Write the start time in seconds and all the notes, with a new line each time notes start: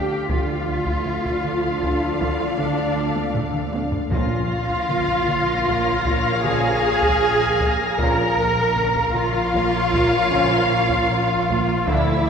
Already playing: D2 A2 F3 D4 F4 G4 A4 D5 F5 G5 F6 B6
0.28 D2 A2 D3 F3 D4 F4 A4 D5 F5, taiko
0.68 D3
0.86 taiko
1.06 D3, taiko mid
1.25 taiko
1.44 D3, taiko mid
1.83 D4, taiko
2.21 D3, taiko
2.58 D3 D4 D5, taiko mid
2.96 D3
3.16 taiko high
3.34 D3, taiko low-mid
3.54 taiko mid
3.73 D4, taiko high
3.92 taiko low
4.11 A#1 A#2 F3 C#4 F4 A#4 C#5 F5 F6 A#6, taiko
4.50 A#2
4.69 taiko
4.89 A#2, taiko mid
5.08 taiko
5.28 A#2, taiko mid
5.67 A#3, taiko
6.05 A#2, taiko
6.44 A#2 F3 C#4 F4 G#4 G#5, taiko mid
6.83 A#2
7.03 taiko
7.21 A#2
7.60 A#3, taiko
7.98 A#1 A#2 F3 C#4 F4 A#4 C#5 F5 A#5, taiko
8.38 A#2
8.57 taiko
8.76 A#2, taiko mid
8.95 taiko
9.14 A#2 F4 F5, taiko mid
9.53 A#3, taiko
9.93 A#2, taiko
10.31 A#2 F3 C#4 F4, taiko mid
10.71 A#2
10.90 taiko
11.09 A#2
11.48 A#3, taiko
11.86 D2 D3 F3 A3 D4 E4 A4 D5 E5 F5 D6 A6, taiko, riser
12.26 D3